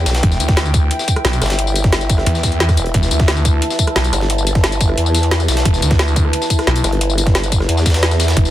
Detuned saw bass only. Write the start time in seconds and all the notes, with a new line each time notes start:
0.23 E1
0.40 D2
1.25 B1
2.27 E2
2.94 E1
3.11 D2
3.96 B1
5.65 E1
5.82 D2
6.67 B1
8.37 E1